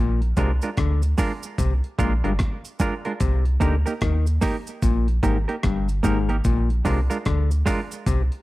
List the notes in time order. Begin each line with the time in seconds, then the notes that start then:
Already playing: A#1 A#2
0.22 closed hi-hat
0.37 C2 C3 G#3 D4 F4 A#4, kick, closed hi-hat, cabasa
0.62 G#3 D4 F4 A#4, closed hi-hat, cabasa
0.77 D2 D3, kick, cross-stick, closed hi-hat
1.02 closed hi-hat, cabasa
1.18 G#3 D4 F4 A#4, kick, open hi-hat, cabasa
1.43 closed hi-hat, cabasa
1.58 C2 C3, kick, closed hi-hat, cabasa
1.84 closed hi-hat
1.98 A#1 A#2 G#3 D4 F4 A#4, kick, closed hi-hat, cabasa
2.24 G1 G2 G#3 D4 F4 A#4, closed hi-hat
2.39 kick, cross-stick, closed hi-hat
2.65 closed hi-hat, cabasa
2.79 G#3 D4 F4 A#4, kick, closed hi-hat, cabasa
3.05 G#3 D4 F4 A#4, closed hi-hat
3.20 C2 C3, kick, closed hi-hat, cabasa
3.45 closed hi-hat
3.60 D2 D3 A#3 D#4 G4 A#4, kick, closed hi-hat, cabasa
3.86 A#3 D#4 G4 A#4, closed hi-hat, cabasa
4.01 D#2 D#3, kick, cross-stick, closed hi-hat
4.27 closed hi-hat, cabasa
4.41 A#3 D#4 G4 A#4, kick, cross-stick, open hi-hat, cabasa
4.67 closed hi-hat, cabasa
4.82 A#1 A#2, kick, closed hi-hat, cabasa
5.08 closed hi-hat
5.23 G#1 G#2 A#3 D#4 G4 A#4, kick, closed hi-hat, cabasa
5.48 A#3 D#4 G4 A#4, closed hi-hat
5.63 G1 G2, kick, cross-stick, closed hi-hat
5.89 closed hi-hat, cabasa
6.03 G#1 G#2 A#3 D#4 G4 A#4, kick, closed hi-hat, cabasa
6.29 A#3 D#4 G4 A#4, closed hi-hat
6.44 A#1 A#2, kick, closed hi-hat, cabasa
6.70 closed hi-hat
6.85 C2 C3 G#3 D4 F4 A#4, kick, open hi-hat, cabasa
7.10 G#3 D4 F4 A#4, closed hi-hat, cabasa
7.25 D2 D3, kick, cross-stick, closed hi-hat
7.51 closed hi-hat, cabasa
7.66 G#3 D4 F4 A#4, kick, cross-stick, open hi-hat, cabasa
7.91 closed hi-hat, cabasa
8.06 C2 C3, kick, closed hi-hat, cabasa
8.32 closed hi-hat